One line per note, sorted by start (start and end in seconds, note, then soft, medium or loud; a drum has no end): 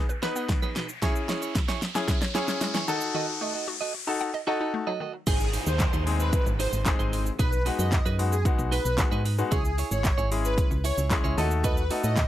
0.00 riser medium
0.09 0.21 B4 loud
0.09 muted clean electric guitar stroke soft
0.09 shaker soft
0.22 0.64 B3 medium
0.22 0.36 D#4 medium
0.22 0.34 D#4 medium
0.22 0.64 D#4 medium
0.22 0.35 G#4 medium
0.22 0.65 B4 loud
0.22 0.35 B4 loud
0.22 snare medium
0.22 closed hi-hat medium
0.22 shaker medium
0.36 0.47 B3 medium
0.36 0.48 D#4 medium
0.36 0.48 G#4 medium
0.36 0.49 B4 medium
0.36 shaker medium
0.49 0.61 G#3 medium
0.49 kick loud
0.49 snare medium
0.49 closed hi-hat medium
0.49 shaker medium
0.62 0.74 F#3 medium
0.62 0.74 D#4 medium
0.62 0.75 G#4 medium
0.62 0.76 B4 medium
0.62 shaker soft
0.76 0.87 B2 medium
0.76 0.90 D#4 medium
0.76 0.89 G#4 medium
0.76 0.88 B4 medium
0.76 snare medium
0.76 closed hi-hat soft
0.76 shaker soft
0.89 muted clean electric guitar stroke medium
0.89 shaker medium
1.02 1.14 C#3 medium
1.02 1.51 C#4 medium
1.02 1.21 E4 medium
1.02 1.51 E4 medium
1.02 1.51 G#4 medium
1.02 1.15 G#4 medium
1.02 1.14 C#5 loud
1.02 kick loud
1.02 snare medium
1.02 closed hi-hat medium
1.02 shaker medium
1.15 muted clean electric guitar stroke medium
1.15 shaker medium
1.29 1.40 G#3 medium
1.29 1.42 E4 medium
1.29 1.41 G#4 medium
1.29 1.41 C#5 medium
1.29 snare loud
1.29 closed hi-hat medium
1.29 shaker medium
1.42 1.54 E4 medium
1.42 1.54 G#4 medium
1.42 1.55 C#5 medium
1.42 shaker medium
1.55 1.67 E4 medium
1.55 muted clean electric guitar stroke soft
1.55 kick loud
1.55 snare loud
1.55 closed hi-hat medium
1.55 shaker medium
1.68 1.81 E4 medium
1.68 1.81 G#4 medium
1.68 1.82 C#5 loud
1.68 snare loud
1.68 shaker medium
1.82 snare loud
1.82 closed hi-hat medium
1.82 shaker medium
1.95 2.16 C#4 medium
1.95 2.16 E4 medium
1.95 2.16 G#4 medium
1.95 2.07 G#5 medium
1.95 muted clean electric guitar stroke soft
1.95 snare loud
1.95 shaker medium
2.08 2.20 E5 medium
2.08 muted clean electric guitar stroke medium
2.08 kick loud
2.08 snare loud
2.08 closed hi-hat medium
2.08 shaker medium
2.22 2.33 C#5 loud
2.22 muted clean electric guitar stroke medium
2.22 snare loud
2.22 shaker medium
2.35 2.77 C#4 medium
2.35 2.48 E4 medium
2.35 2.47 E4 medium
2.35 2.77 E4 medium
2.35 2.77 G#4 loud
2.35 2.47 G#4 medium
2.35 2.47 C#5 loud
2.35 snare loud
2.35 closed hi-hat medium
2.35 shaker medium
2.48 2.60 C#4 medium
2.48 2.60 E4 medium
2.48 2.61 G#4 medium
2.48 2.61 C#5 medium
2.48 snare loud
2.48 shaker medium
2.61 2.73 G#3 medium
2.61 muted clean electric guitar stroke soft
2.61 snare loud
2.61 closed hi-hat medium
2.61 shaker medium
2.74 2.86 E3 medium
2.74 2.87 E4 medium
2.74 2.88 G#4 medium
2.74 2.89 C#5 medium
2.74 snare loud
2.74 shaker soft
2.88 3.00 D#3 medium
2.88 3.73 D#4 medium
2.88 3.02 F#4 medium
2.88 3.73 F#4 medium
2.88 3.73 A4 loud
2.88 3.01 A4 medium
2.88 3.00 D#5 medium
2.88 closed hi-hat soft
2.88 shaker soft
3.01 muted clean electric guitar stroke soft
3.01 shaker medium
3.14 3.26 D#3 medium
3.14 3.33 F#4 medium
3.14 3.27 A4 medium
3.14 3.27 D#5 medium
3.28 muted clean electric guitar stroke soft
3.41 3.53 A3 medium
3.41 3.54 F#4 medium
3.41 3.54 A4 medium
3.41 3.53 D#5 medium
3.54 3.66 F#4 medium
3.54 3.67 A4 medium
3.54 3.67 D#5 medium
3.68 3.79 F#4 medium
3.68 muted clean electric guitar stroke soft
3.81 3.93 F#4 medium
3.81 3.93 A4 medium
3.81 3.94 D#5 medium
3.94 muted clean electric guitar stroke soft
4.07 4.28 D#4 medium
4.07 4.28 F#4 medium
4.07 4.28 A4 medium
4.07 4.19 A5 medium
4.07 muted clean electric guitar stroke soft
4.21 4.32 F#5 medium
4.21 muted clean electric guitar stroke soft
4.34 4.46 D#5 loud
4.34 muted clean electric guitar stroke soft
4.47 4.89 D#4 medium
4.47 4.60 F#4 medium
4.47 4.59 F#4 medium
4.47 4.89 F#4 medium
4.47 4.89 A4 loud
4.47 4.60 A4 loud
4.47 4.59 D#5 loud
4.60 4.72 D#4 medium
4.60 4.73 F#4 medium
4.60 4.73 A4 medium
4.60 4.73 D#5 medium
4.74 4.86 A3 medium
4.74 muted clean electric guitar stroke soft
4.87 4.99 F#3 medium
4.87 4.99 F#4 medium
4.87 5.00 A4 medium
4.87 5.00 D#5 medium
5.00 5.12 D#3 medium
5.00 5.15 F#4 medium
5.00 5.13 A4 medium
5.00 5.12 D#5 medium
5.14 muted clean electric guitar stroke medium
5.27 5.58 G#1 loud
5.27 5.45 D#4 medium
5.27 5.50 G#4 loud
5.27 5.40 G#4 medium
5.27 5.39 C5 loud
5.27 kick loud
5.27 closed hi-hat medium
5.27 crash loud
5.27 downlifter medium
5.27 shaker medium
5.40 muted clean electric guitar stroke soft
5.40 shaker medium
5.53 5.66 D#4 medium
5.53 5.66 G#4 medium
5.53 5.65 C5 medium
5.53 open hi-hat medium
5.53 shaker medium
5.66 5.88 D#2 loud
5.66 5.79 D#4 medium
5.66 5.79 G#4 medium
5.66 5.80 C5 medium
5.66 5.79 C5 medium
5.66 shaker medium
5.79 5.92 C5 medium
5.79 kick loud
5.79 snare medium
5.79 clap loud
5.79 closed hi-hat medium
5.79 shaker medium
5.93 6.35 D#2 loud
5.93 6.05 D#4 medium
5.93 6.06 G#4 medium
5.93 6.06 C5 medium
5.93 shaker medium
6.06 6.48 G#3 medium
6.06 6.48 C4 medium
6.06 6.49 D#4 medium
6.06 6.49 G#4 medium
6.06 muted clean electric guitar stroke soft
6.06 open hi-hat medium
6.06 shaker medium
6.20 6.43 B4 medium
6.20 muted clean electric guitar stroke soft
6.20 shaker medium
6.33 muted clean electric guitar stroke soft
6.33 kick loud
6.33 closed hi-hat medium
6.33 shaker medium
6.46 6.67 G#1 medium
6.46 muted clean electric guitar stroke medium
6.46 shaker medium
6.59 6.73 D#4 medium
6.59 6.72 G#4 medium
6.59 6.71 C5 loud
6.59 6.71 C5 medium
6.59 open hi-hat medium
6.59 shaker medium
6.73 6.94 G#1 medium
6.73 6.85 D#4 medium
6.73 6.85 G#4 medium
6.73 6.86 C5 medium
6.73 shaker medium
6.85 7.28 G#3 medium
6.85 7.28 C4 medium
6.85 7.28 D#4 medium
6.85 7.28 G#4 loud
6.85 kick loud
6.85 snare loud
6.85 clap loud
6.85 closed hi-hat medium
6.85 shaker medium
6.99 7.31 G#1 medium
6.99 7.11 D#4 medium
6.99 7.12 G#4 medium
6.99 7.12 C5 loud
6.99 shaker soft
7.12 7.27 D#4 medium
7.12 7.25 G#4 medium
7.12 7.25 C5 medium
7.12 open hi-hat medium
7.12 shaker soft
7.26 muted clean electric guitar stroke soft
7.26 shaker medium
7.39 7.71 B1 loud
7.39 7.58 D#4 medium
7.39 7.52 G#4 loud
7.39 7.63 B4 loud
7.39 7.51 B4 loud
7.39 kick loud
7.39 closed hi-hat medium
7.39 shaker medium
7.52 muted clean electric guitar stroke medium
7.52 shaker medium
7.66 7.94 G#3 medium
7.66 7.94 B3 medium
7.66 7.79 D#4 medium
7.66 7.94 D#4 medium
7.66 7.94 F#4 medium
7.66 7.78 G#4 medium
7.66 7.78 B4 medium
7.66 open hi-hat medium
7.66 shaker medium
7.79 8.00 F#2 loud
7.79 7.91 D#4 medium
7.79 7.92 G#4 medium
7.79 7.92 B4 medium
7.79 7.91 D#5 medium
7.79 shaker medium
7.92 8.04 D#5 medium
7.92 kick loud
7.92 snare medium
7.92 clap loud
7.92 closed hi-hat medium
7.92 shaker medium
8.06 8.48 F#2 loud
8.06 8.18 D#4 medium
8.06 8.18 G#4 medium
8.06 8.19 B4 medium
8.06 shaker medium
8.19 8.33 G#3 medium
8.19 8.33 B3 medium
8.19 8.33 D#4 medium
8.19 8.33 F#4 medium
8.19 muted clean electric guitar stroke soft
8.19 open hi-hat medium
8.19 shaker medium
8.32 8.44 G#4 medium
8.32 muted clean electric guitar stroke soft
8.32 shaker medium
8.45 8.73 G#3 medium
8.45 8.73 B3 medium
8.45 8.73 D#4 medium
8.45 8.74 F#4 loud
8.45 muted clean electric guitar stroke soft
8.45 kick loud
8.45 closed hi-hat medium
8.45 shaker medium
8.59 8.80 B1 medium
8.59 muted clean electric guitar stroke medium
8.59 shaker medium
8.72 8.85 D#4 medium
8.72 8.85 G#4 loud
8.72 8.95 B4 medium
8.72 8.84 B4 loud
8.72 open hi-hat medium
8.72 shaker medium
8.85 9.06 B1 medium
8.85 8.97 D#4 medium
8.85 8.98 G#4 medium
8.85 8.98 B4 medium
8.85 shaker medium
8.98 9.19 G#3 medium
8.98 9.20 B3 medium
8.98 9.20 D#4 medium
8.98 9.20 F#4 medium
8.98 muted clean electric guitar stroke soft
8.98 kick loud
8.98 snare loud
8.98 clap loud
8.98 closed hi-hat medium
8.98 shaker medium
9.12 9.43 G#2 medium
9.12 9.24 D#4 medium
9.12 9.24 G#4 medium
9.12 9.25 B4 medium
9.12 shaker soft
9.25 9.39 D#4 medium
9.25 9.38 G#4 medium
9.25 9.37 B4 medium
9.25 open hi-hat medium
9.25 shaker soft
9.38 9.52 G#3 medium
9.38 9.52 B3 medium
9.38 9.52 D#4 medium
9.38 9.52 F#4 loud
9.38 muted clean electric guitar stroke soft
9.38 shaker medium
9.51 9.83 C#2 loud
9.51 9.70 E4 loud
9.51 9.75 G#4 loud
9.51 9.64 G#4 loud
9.51 9.63 C#5 loud
9.51 kick loud
9.51 closed hi-hat medium
9.51 shaker medium
9.65 muted clean electric guitar stroke medium
9.65 shaker medium
9.78 9.91 E4 medium
9.78 9.91 G#4 medium
9.78 9.90 C#5 medium
9.78 open hi-hat medium
9.78 shaker medium
9.91 10.12 G#1 loud
9.91 10.03 E4 medium
9.91 10.04 G#4 medium
9.91 10.04 C#5 medium
9.91 10.03 C#5 medium
9.91 shaker medium
10.04 10.17 C#5 medium
10.04 muted clean electric guitar stroke soft
10.04 kick loud
10.04 snare medium
10.04 clap loud
10.04 closed hi-hat medium
10.04 shaker medium
10.18 10.60 G#1 loud
10.18 10.30 E4 medium
10.18 10.30 G#4 medium
10.18 10.31 C#5 loud
10.18 shaker medium
10.31 10.73 G#3 medium
10.31 10.73 C#4 medium
10.31 10.73 E4 medium
10.31 10.73 G#4 medium
10.31 muted clean electric guitar stroke soft
10.31 open hi-hat medium
10.31 shaker medium
10.44 10.68 B4 medium
10.44 muted clean electric guitar stroke soft
10.44 shaker medium
10.58 muted clean electric guitar stroke soft
10.58 kick loud
10.58 closed hi-hat medium
10.58 shaker medium
10.71 10.92 C#2 medium
10.71 muted clean electric guitar stroke soft
10.71 shaker medium
10.84 10.97 E4 medium
10.84 10.97 G#4 medium
10.84 10.96 C#5 loud
10.84 10.96 C#5 medium
10.84 open hi-hat medium
10.84 shaker medium
10.97 11.19 C#2 medium
10.97 11.10 E4 medium
10.97 11.10 G#4 medium
10.97 11.11 C#5 medium
10.97 shaker medium
11.10 11.38 G#3 medium
11.10 11.38 C#4 medium
11.10 11.38 E4 medium
11.10 11.38 G#4 loud
11.10 kick loud
11.10 snare medium
11.10 clap loud
11.10 closed hi-hat medium
11.10 shaker medium
11.24 11.35 C#2 medium
11.24 11.37 E4 medium
11.24 11.38 G#4 medium
11.24 11.38 C#5 medium
11.24 shaker soft
11.37 11.90 D#2 loud
11.37 11.80 A3 loud
11.37 11.80 D#4 medium
11.37 11.52 F#4 medium
11.37 11.80 F#4 medium
11.37 11.50 A4 medium
11.37 11.80 A4 loud
11.37 11.49 D#5 medium
11.37 open hi-hat medium
11.37 shaker soft
11.51 muted clean electric guitar stroke medium
11.51 shaker medium
11.64 11.82 F#4 medium
11.64 11.77 A4 medium
11.64 11.88 B4 loud
11.64 11.76 D#5 loud
11.64 kick loud
11.64 closed hi-hat medium
11.64 shaker medium
11.77 muted clean electric guitar stroke soft
11.77 shaker medium
11.90 12.19 A3 medium
11.90 12.19 D#4 medium
11.90 12.04 F#4 medium
11.90 12.19 F#4 medium
11.90 12.03 A4 medium
11.90 12.19 A4 medium
11.90 12.02 D#5 medium
11.90 open hi-hat medium
11.90 shaker medium
12.04 12.25 A2 loud
12.04 12.16 F#4 medium
12.04 12.16 A4 medium
12.04 12.16 D#5 medium
12.04 shaker medium
12.16 12.28 D#5 medium
12.16 muted clean electric guitar stroke soft
12.16 kick loud
12.16 snare medium
12.16 clap loud
12.16 closed hi-hat medium
12.16 shaker medium